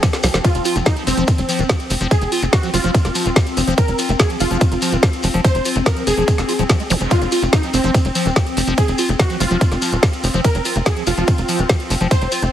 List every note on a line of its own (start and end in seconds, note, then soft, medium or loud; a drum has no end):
0.00 0.45 F3 medium
0.00 0.43 C4 medium
0.00 0.36 G#4 loud
0.00 kick loud
0.00 snare medium
0.00 closed hi-hat medium
0.00 ride medium
0.00 shekere medium
0.13 snare medium
0.13 closed hi-hat medium
0.13 shekere soft
0.23 0.30 C2 loud
0.23 0.28 F3 medium
0.23 snare medium
0.23 open hi-hat loud
0.23 shekere medium
0.34 0.40 F1 medium
0.34 0.39 F3 medium
0.34 snare medium
0.34 closed hi-hat medium
0.34 shekere soft
0.44 0.49 F3 medium
0.44 12.52 C4 medium
0.44 0.62 F4 loud
0.44 kick loud
0.44 closed hi-hat medium
0.44 ride medium
0.44 shekere medium
0.55 0.61 F1 medium
0.55 0.58 F#3 medium
0.55 closed hi-hat medium
0.55 shekere soft
0.65 0.77 F4 medium
0.65 open hi-hat loud
0.65 shekere medium
0.76 0.82 F1 medium
0.76 0.79 F3 medium
0.76 closed hi-hat medium
0.76 shekere soft
0.86 0.95 D#4 medium
0.86 kick loud
0.86 snare loud
0.86 closed hi-hat medium
0.86 ride medium
0.86 shekere medium
0.97 1.04 F3 medium
0.97 closed hi-hat medium
0.97 shekere soft
1.07 1.13 F1 medium
1.07 1.12 F3 medium
1.07 2.03 C4 loud
1.07 open hi-hat loud
1.07 shekere medium
1.17 1.24 F1 medium
1.17 1.24 F3 loud
1.17 closed hi-hat medium
1.17 shekere soft
1.27 kick loud
1.27 closed hi-hat medium
1.27 ride medium
1.27 shekere medium
1.38 1.45 F1 medium
1.38 1.41 F#3 medium
1.38 closed hi-hat medium
1.38 shekere soft
1.49 1.61 F3 medium
1.49 open hi-hat loud
1.49 shekere medium
1.59 1.65 D#1 medium
1.59 1.64 D#3 medium
1.59 closed hi-hat medium
1.59 shekere soft
1.69 1.76 F3 medium
1.69 kick loud
1.69 snare loud
1.69 closed hi-hat medium
1.69 ride medium
1.69 shekere soft
1.80 closed hi-hat medium
1.80 shekere soft
1.90 1.97 F1 loud
1.90 1.95 F3 medium
1.90 open hi-hat loud
1.90 shekere medium
2.01 2.07 F1 medium
2.01 2.08 F3 loud
2.01 closed hi-hat medium
2.01 shekere soft
2.11 2.16 F3 medium
2.11 2.29 G#4 loud
2.11 kick loud
2.11 closed hi-hat medium
2.11 ride medium
2.11 shekere medium
2.21 2.28 F1 medium
2.21 2.24 F#3 medium
2.21 closed hi-hat medium
2.21 shekere soft
2.32 2.44 F4 medium
2.32 open hi-hat loud
2.32 shekere medium
2.42 2.49 F1 medium
2.42 2.45 F3 medium
2.42 closed hi-hat medium
2.42 shekere soft
2.53 2.62 F#4 medium
2.53 kick loud
2.53 snare loud
2.53 closed hi-hat medium
2.53 ride medium
2.53 shekere medium
2.63 2.70 F3 medium
2.63 closed hi-hat medium
2.63 shekere soft
2.74 2.80 F1 loud
2.74 2.78 F3 medium
2.74 3.69 F4 loud
2.74 open hi-hat loud
2.74 shekere loud
2.84 2.90 F1 medium
2.84 2.91 F3 loud
2.84 closed hi-hat medium
2.84 shekere soft
2.94 2.99 D#3 medium
2.94 kick loud
2.94 closed hi-hat medium
2.94 ride medium
2.94 shekere medium
3.05 3.11 F1 medium
3.05 3.08 F#3 medium
3.05 snare soft
3.05 closed hi-hat medium
3.05 shekere soft
3.15 3.27 F3 medium
3.15 open hi-hat loud
3.15 shekere medium
3.26 3.32 D#1 medium
3.26 3.30 D#3 medium
3.26 closed hi-hat medium
3.26 shekere soft
3.36 3.43 F3 medium
3.36 kick loud
3.36 snare loud
3.36 closed hi-hat medium
3.36 ride medium
3.36 shekere soft
3.47 closed hi-hat medium
3.47 shekere soft
3.57 3.63 F1 loud
3.57 3.62 F3 medium
3.57 open hi-hat loud
3.57 shekere loud
3.67 3.74 F1 medium
3.67 3.74 F3 loud
3.67 closed hi-hat medium
3.67 shekere soft
3.78 3.82 F3 medium
3.78 3.96 A#4 loud
3.78 kick loud
3.78 closed hi-hat medium
3.78 ride medium
3.78 shekere medium
3.88 3.95 F1 medium
3.88 3.91 F#3 medium
3.88 closed hi-hat medium
3.88 shekere soft
3.99 4.11 F4 medium
3.99 open hi-hat loud
3.99 shekere loud
4.09 4.15 F1 medium
4.09 4.12 F3 medium
4.09 closed hi-hat medium
4.09 shekere soft
4.19 4.28 G#4 medium
4.19 kick loud
4.19 snare loud
4.19 closed hi-hat medium
4.19 ride medium
4.19 shekere medium
4.29 4.37 F3 medium
4.29 closed hi-hat medium
4.29 shekere soft
4.40 4.47 F1 medium
4.40 4.45 F3 medium
4.40 5.36 F4 loud
4.40 open hi-hat loud
4.40 shekere loud
4.51 4.57 F1 medium
4.51 4.58 F3 loud
4.51 closed hi-hat medium
4.51 shekere soft
4.61 4.66 D#3 medium
4.61 kick loud
4.61 closed hi-hat medium
4.61 ride medium
4.61 shekere medium
4.72 4.78 F1 medium
4.72 4.74 F#3 medium
4.72 closed hi-hat medium
4.72 shekere soft
4.82 4.94 F3 medium
4.82 open hi-hat loud
4.82 shekere loud
4.92 4.99 D#1 medium
4.92 4.97 D#3 medium
4.92 closed hi-hat medium
4.92 shekere soft
5.03 5.10 F3 medium
5.03 kick loud
5.03 snare loud
5.03 closed hi-hat medium
5.03 ride medium
5.03 shekere medium
5.13 closed hi-hat medium
5.13 shekere soft
5.23 5.30 F1 loud
5.23 5.28 F3 medium
5.23 open hi-hat loud
5.23 shekere loud
5.33 5.40 F1 medium
5.33 5.41 F3 loud
5.33 closed hi-hat soft
5.33 shekere soft
5.44 5.49 F3 medium
5.44 5.62 C5 loud
5.44 kick loud
5.44 closed hi-hat medium
5.44 ride medium
5.44 shekere medium
5.55 5.61 F1 medium
5.55 5.58 F#3 medium
5.55 closed hi-hat medium
5.55 shekere soft
5.65 5.77 F4 medium
5.65 open hi-hat loud
5.65 shekere loud
5.75 5.82 F1 medium
5.75 5.79 F3 medium
5.75 closed hi-hat soft
5.75 shekere soft
5.86 5.95 A#4 medium
5.86 kick loud
5.86 snare loud
5.86 closed hi-hat medium
5.86 ride medium
5.86 shekere medium
5.97 6.04 F3 medium
5.97 closed hi-hat medium
5.97 shekere soft
6.07 6.13 F1 medium
6.07 6.12 F3 medium
6.07 7.03 G#4 loud
6.07 open hi-hat loud
6.07 shekere loud
6.17 6.24 F1 medium
6.17 6.24 F3 loud
6.17 closed hi-hat medium
6.17 shekere soft
6.28 6.32 D#3 medium
6.28 kick loud
6.28 closed hi-hat medium
6.28 ride medium
6.28 shekere medium
6.38 6.45 F1 medium
6.38 6.41 F#3 medium
6.38 snare soft
6.38 closed hi-hat soft
6.38 shekere soft
6.49 6.53 F4 medium
6.49 open hi-hat loud
6.49 shekere loud
6.59 6.65 D#1 medium
6.59 6.64 F3 loud
6.59 closed hi-hat medium
6.59 shekere soft
6.69 6.76 F3 medium
6.69 kick loud
6.69 snare loud
6.69 closed hi-hat medium
6.69 ride medium
6.69 shekere soft
6.80 6.83 G#3 medium
6.80 closed hi-hat medium
6.80 shekere soft
6.90 6.97 F1 loud
6.90 6.95 F3 loud
6.90 open hi-hat loud
6.90 zap medium
6.90 shekere loud
7.01 7.07 F1 medium
7.01 7.04 F3 medium
7.01 closed hi-hat soft
7.01 shekere soft
7.11 7.16 F3 medium
7.11 7.29 F4 loud
7.11 kick loud
7.11 closed hi-hat medium
7.11 ride medium
7.11 shekere medium
7.21 7.28 F1 medium
7.21 7.24 F#3 medium
7.21 closed hi-hat soft
7.21 shekere soft
7.32 7.44 F4 medium
7.32 open hi-hat loud
7.32 shekere medium
7.42 7.49 F1 medium
7.42 7.45 F3 medium
7.42 closed hi-hat medium
7.42 shekere soft
7.53 7.57 D#3 medium
7.53 7.62 D#4 medium
7.53 kick loud
7.53 snare loud
7.53 closed hi-hat medium
7.53 ride medium
7.53 shekere medium
7.63 7.70 F3 medium
7.63 closed hi-hat medium
7.63 shekere soft
7.74 7.80 F1 loud
7.74 7.78 F3 medium
7.74 8.69 C4 loud
7.74 open hi-hat loud
7.74 shekere medium
7.83 7.90 F1 medium
7.83 7.91 F3 loud
7.83 closed hi-hat medium
7.83 shekere soft
7.94 7.99 D#3 medium
7.94 kick loud
7.94 closed hi-hat medium
7.94 ride medium
7.94 shekere medium
8.05 8.11 F1 medium
8.05 8.08 F#3 medium
8.05 closed hi-hat medium
8.05 shekere soft
8.15 8.27 F3 medium
8.15 open hi-hat loud
8.15 shekere medium
8.26 8.32 D#1 medium
8.26 8.30 D#3 medium
8.26 closed hi-hat medium
8.26 shekere soft
8.36 8.43 F3 medium
8.36 kick loud
8.36 snare loud
8.36 closed hi-hat medium
8.36 ride medium
8.36 shekere medium
8.46 closed hi-hat medium
8.46 shekere soft
8.57 8.63 F1 loud
8.57 8.62 F3 medium
8.57 open hi-hat loud
8.57 shekere medium
8.67 8.74 F1 medium
8.67 8.74 F3 loud
8.67 closed hi-hat soft
8.67 shekere soft
8.77 8.82 F3 medium
8.77 8.96 G#4 loud
8.77 kick loud
8.77 closed hi-hat medium
8.77 ride medium
8.77 shekere soft
8.88 8.95 F1 medium
8.88 8.91 F#3 medium
8.88 closed hi-hat medium
8.88 shekere soft
8.98 9.11 F4 medium
8.98 open hi-hat loud
8.98 shekere medium
9.09 9.15 F1 medium
9.09 9.12 F3 medium
9.09 closed hi-hat medium
9.09 shekere soft
9.19 9.24 D#3 medium
9.19 9.28 F#4 medium
9.19 kick loud
9.19 snare loud
9.19 closed hi-hat medium
9.19 ride medium
9.19 shekere soft
9.30 9.37 F3 medium
9.30 closed hi-hat medium
9.30 shekere soft
9.40 9.47 F1 loud
9.40 9.45 F3 medium
9.40 10.36 F4 loud
9.40 open hi-hat loud
9.40 shekere medium
9.51 9.57 F1 medium
9.51 9.58 F3 loud
9.51 closed hi-hat medium
9.51 shekere soft
9.61 kick loud
9.61 closed hi-hat medium
9.61 ride medium
9.61 shekere soft
9.72 9.78 F1 medium
9.72 9.74 F#3 medium
9.72 snare soft
9.72 closed hi-hat medium
9.72 shekere soft
9.82 9.94 F3 medium
9.82 open hi-hat loud
9.82 shekere medium
9.92 9.99 D#1 medium
9.92 9.97 D#3 medium
9.92 closed hi-hat medium
9.92 shekere soft
10.03 10.10 F3 medium
10.03 kick loud
10.03 snare loud
10.03 closed hi-hat medium
10.03 ride medium
10.03 shekere soft
10.13 closed hi-hat medium
10.13 shekere soft
10.23 10.30 F1 loud
10.23 10.28 F3 medium
10.23 open hi-hat loud
10.23 shekere medium
10.34 10.40 F1 medium
10.34 10.41 F3 loud
10.34 closed hi-hat medium
10.34 shekere soft
10.44 10.49 F3 medium
10.44 10.62 A#4 loud
10.44 kick loud
10.44 closed hi-hat medium
10.44 ride medium
10.44 shekere medium
10.54 10.61 F1 medium
10.54 10.58 F#3 medium
10.54 closed hi-hat medium
10.54 shekere soft
10.65 10.77 F4 medium
10.65 open hi-hat loud
10.65 shekere medium
10.75 10.82 F1 medium
10.75 10.79 F3 medium
10.75 closed hi-hat medium
10.75 shekere soft
10.86 10.91 D#3 medium
10.86 10.95 G#4 medium
10.86 kick loud
10.86 snare loud
10.86 closed hi-hat medium
10.86 ride medium
10.86 shekere medium
10.97 11.04 F3 medium
10.97 closed hi-hat medium
10.97 shekere soft
11.07 11.13 F1 medium
11.07 11.12 F3 medium
11.07 12.03 F4 loud
11.07 open hi-hat loud
11.07 shekere loud
11.17 11.24 F1 medium
11.17 11.24 F3 loud
11.17 closed hi-hat medium
11.17 shekere soft
11.27 11.32 D#3 medium
11.27 kick loud
11.27 closed hi-hat medium
11.27 ride medium
11.27 shekere medium
11.38 11.45 F1 medium
11.38 11.41 F#3 medium
11.38 closed hi-hat medium
11.38 shekere soft
11.49 11.61 F3 medium
11.49 open hi-hat loud
11.49 shekere medium
11.59 11.65 D#1 medium
11.59 11.64 D#3 medium
11.59 closed hi-hat medium
11.59 shekere soft
11.69 11.76 F3 medium
11.69 kick loud
11.69 snare loud
11.69 closed hi-hat medium
11.69 ride medium
11.69 shekere soft
11.79 closed hi-hat medium
11.79 shekere soft
11.90 11.97 F1 loud
11.90 11.95 F3 medium
11.90 open hi-hat loud
11.90 shekere medium
12.01 12.07 F1 medium
12.01 12.08 F3 loud
12.01 closed hi-hat medium
12.01 shekere soft
12.11 12.16 F3 medium
12.11 12.29 C5 loud
12.11 kick loud
12.11 closed hi-hat medium
12.11 ride medium
12.11 shekere medium
12.21 12.28 F1 medium
12.21 12.24 F#3 medium
12.21 closed hi-hat medium
12.21 shekere soft
12.32 12.44 F4 medium
12.32 open hi-hat loud
12.32 shekere loud
12.42 12.49 F1 medium
12.42 12.45 F3 medium
12.42 closed hi-hat medium
12.42 shekere soft